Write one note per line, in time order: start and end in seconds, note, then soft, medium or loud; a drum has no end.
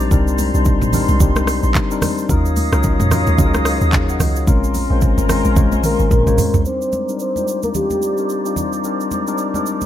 0.00 0.11 G3 medium
0.00 0.12 C4 medium
0.00 0.12 D4 medium
0.00 0.12 D#4 medium
0.00 2.30 F4 loud
0.00 1.21 G4 loud
0.00 0.12 A#4 loud
0.00 2.25 C5 medium
0.00 2.25 D5 medium
0.00 2.06 A#5 medium
0.00 shaker medium
0.11 0.52 C2 loud
0.11 0.45 G3 medium
0.11 0.45 C4 medium
0.11 0.45 D4 medium
0.11 0.45 D#4 medium
0.11 0.45 A#4 loud
0.11 2.27 C6 medium
0.11 kick loud
0.11 shaker medium
0.28 shaker medium
0.38 open hi-hat soft
0.38 high conga medium
0.38 shaker medium
0.54 0.83 C2 medium
0.54 0.86 G3 medium
0.54 0.86 C4 medium
0.54 0.87 D4 medium
0.54 0.87 D#4 medium
0.54 0.87 C5 loud
0.54 shaker medium
0.65 kick loud
0.65 shaker medium
0.81 1.07 A#1 loud
0.81 mid tom loud
0.81 high conga medium
0.81 shaker medium
0.93 1.16 G3 medium
0.93 1.16 C4 medium
0.93 1.16 D4 medium
0.93 1.16 D#4 medium
0.93 1.16 A#4 loud
0.93 open hi-hat medium
0.93 low conga medium
0.93 shaker loud
1.08 1.20 C2 medium
1.08 high conga medium
1.08 shaker medium
1.20 1.61 C2 loud
1.20 1.75 G3 medium
1.20 1.75 C4 medium
1.20 1.75 D4 medium
1.20 1.75 D#4 medium
1.20 1.75 G4 loud
1.20 kick loud
1.20 low conga medium
1.20 shaker medium
1.36 cross-stick loud
1.36 high conga medium
1.36 shaker medium
1.47 cross-stick loud
1.47 open hi-hat medium
1.47 shaker medium
1.63 1.74 A#1 loud
1.63 shaker soft
1.75 kick loud
1.75 clap medium
1.75 shaker medium
1.91 2.23 G3 medium
1.91 2.23 C4 medium
1.91 2.23 D4 medium
1.91 2.23 D#4 medium
1.91 2.23 A#4 medium
1.91 shaker medium
2.02 cross-stick loud
2.02 open hi-hat medium
2.02 high conga medium
2.02 low conga medium
2.02 shaker loud
2.18 shaker medium
2.29 2.70 D#2 loud
2.29 2.63 F#3 medium
2.29 2.63 C#4 medium
2.29 2.63 D#4 medium
2.29 2.63 F4 medium
2.29 2.64 A#4 loud
2.29 4.45 C#5 medium
2.29 4.45 D#5 medium
2.29 4.45 F5 medium
2.29 4.45 D#6 medium
2.29 kick loud
2.29 shaker medium
2.46 shaker medium
2.56 open hi-hat soft
2.56 high conga medium
2.56 shaker medium
2.72 2.98 C#2 loud
2.72 3.04 F#3 medium
2.72 3.05 C#4 medium
2.72 3.05 D#4 medium
2.72 3.05 F4 medium
2.72 3.05 A#4 loud
2.72 cross-stick loud
2.72 shaker medium
2.83 kick loud
2.83 shaker medium
3.00 3.25 F2 medium
3.00 mid tom medium
3.00 high conga medium
3.00 shaker medium
3.11 3.34 F#3 medium
3.11 3.34 C#4 medium
3.11 3.34 D#4 medium
3.11 3.34 F4 medium
3.11 3.34 A#4 loud
3.11 cross-stick loud
3.11 open hi-hat medium
3.11 low conga medium
3.11 shaker medium
3.27 3.38 D#2 medium
3.27 high conga medium
3.27 shaker medium
3.38 3.79 C#2 loud
3.38 3.93 F#3 medium
3.38 3.93 C#4 medium
3.38 3.93 D#4 medium
3.38 3.93 F4 medium
3.38 3.47 G#4 medium
3.38 kick loud
3.38 low conga medium
3.38 shaker medium
3.46 3.97 A#4 loud
3.54 cross-stick loud
3.54 high conga medium
3.54 shaker medium
3.65 cross-stick loud
3.65 open hi-hat medium
3.65 shaker medium
3.81 4.18 D#2 medium
3.81 shaker soft
3.93 4.09 G#4 medium
3.93 4.08 F5 medium
3.93 kick loud
3.93 clap medium
3.93 shaker medium
4.09 4.20 A#4 medium
4.09 4.20 F#5 medium
4.09 shaker medium
4.20 4.46 C#2 medium
4.20 4.36 F#4 medium
4.20 4.36 D#5 medium
4.20 cross-stick medium
4.20 open hi-hat medium
4.20 high conga medium
4.20 low conga medium
4.20 shaker loud
4.36 4.47 F4 medium
4.36 4.62 C#5 medium
4.36 shaker medium
4.47 4.88 A#1 loud
4.47 4.81 G#3 medium
4.47 4.81 C4 medium
4.47 4.81 C#4 medium
4.47 4.82 F4 medium
4.47 6.43 A#4 medium
4.47 4.82 A#4 loud
4.47 6.44 G#5 medium
4.47 6.39 A#5 medium
4.47 6.64 C6 medium
4.47 kick loud
4.47 shaker medium
4.64 shaker medium
4.74 open hi-hat soft
4.74 high conga medium
4.74 shaker medium
4.90 5.16 A#1 loud
4.90 5.23 G#3 medium
4.90 5.23 C4 medium
4.90 5.23 C#4 medium
4.90 5.23 F4 medium
4.90 5.23 C5 loud
5.01 kick loud
5.01 shaker medium
5.18 5.44 G#1 loud
5.18 high conga medium
5.18 shaker medium
5.29 5.52 G#3 medium
5.29 5.52 C4 medium
5.29 5.52 C#4 medium
5.29 5.52 F4 medium
5.29 5.53 A#4 loud
5.29 cross-stick loud
5.29 open hi-hat medium
5.29 low conga medium
5.29 shaker loud
5.45 5.56 A#1 medium
5.45 high conga medium
5.45 shaker medium
5.56 5.97 A#1 loud
5.56 6.11 G#3 medium
5.56 6.11 C#4 medium
5.56 6.12 F4 medium
5.56 6.11 C5 medium
5.56 6.12 C#5 loud
5.56 kick loud
5.56 high tom medium
5.56 low conga medium
5.56 shaker medium
5.72 high tom medium
5.72 high conga medium
5.72 shaker medium
5.84 6.62 A#4 loud
5.84 open hi-hat medium
5.84 mid tom medium
5.84 shaker medium
5.99 6.10 G#1 loud
5.99 mid tom medium
5.99 shaker soft
6.11 6.26 A#1 medium
6.11 kick loud
6.11 mid tom medium
6.11 shaker medium
6.27 6.38 A#1 medium
6.27 6.59 G#3 medium
6.27 6.59 C#4 medium
6.27 6.59 F4 medium
6.27 6.59 C5 medium
6.27 6.59 C#5 loud
6.27 mid tom medium
6.27 shaker medium
6.38 floor tom loud
6.38 open hi-hat medium
6.38 high conga medium
6.38 low conga medium
6.38 shaker loud
6.54 6.65 C2 medium
6.54 floor tom loud
6.54 shaker medium
6.65 6.99 G3 medium
6.65 7.00 C4 medium
6.65 7.00 D4 medium
6.65 7.00 D#4 medium
6.65 7.00 A#4 medium
6.65 9.86 C5 medium
6.65 7.17 C5 loud
6.65 9.86 D5 medium
6.65 9.86 A#5 medium
6.65 9.86 D6 medium
6.65 shaker medium
6.82 shaker soft
6.93 high conga medium
6.93 shaker medium
7.09 7.30 G3 medium
7.09 7.30 C4 medium
7.09 7.30 D4 medium
7.09 7.30 D#4 medium
7.09 7.30 A#4 medium
7.09 shaker medium
7.19 7.61 C5 loud
7.19 shaker medium
7.36 7.68 G3 medium
7.36 7.68 C4 medium
7.36 7.68 D4 medium
7.36 7.69 D#4 medium
7.36 7.69 F4 medium
7.36 high conga medium
7.36 shaker medium
7.48 shaker medium
7.63 7.69 A#4 medium
7.63 high conga medium
7.63 shaker medium
7.74 8.09 G3 medium
7.74 8.09 C4 medium
7.74 8.09 D4 medium
7.74 8.09 D#4 medium
7.74 8.09 F4 medium
7.74 8.53 G4 medium
7.74 low conga medium
7.74 shaker medium
7.90 high conga medium
7.90 shaker medium
8.02 shaker medium
8.18 8.39 G3 medium
8.18 8.39 C4 medium
8.18 8.39 D4 medium
8.18 8.39 D#4 medium
8.18 8.40 A#4 medium
8.18 shaker soft
8.29 shaker medium
8.45 8.77 G3 medium
8.45 8.77 C4 medium
8.45 8.77 D4 medium
8.45 8.78 D#4 medium
8.45 8.78 F4 medium
8.45 shaker soft
8.56 low conga medium
8.56 shaker loud
8.73 shaker soft
8.84 9.18 G3 medium
8.84 9.18 C4 medium
8.84 9.18 D4 medium
8.84 9.18 D#4 medium
8.84 9.18 A#4 medium
8.84 shaker medium
9.00 shaker soft
9.11 high conga medium
9.11 shaker medium
9.27 9.48 G3 medium
9.27 9.48 C4 medium
9.27 9.48 D4 medium
9.27 9.48 D#4 medium
9.27 9.49 A#4 loud
9.27 shaker medium
9.38 shaker medium
9.54 9.86 G3 medium
9.54 9.86 C4 medium
9.54 9.86 D4 medium
9.54 9.86 D#4 medium
9.54 9.86 A#4 medium
9.54 high conga medium
9.54 shaker medium
9.66 shaker medium
9.81 high conga medium
9.81 shaker medium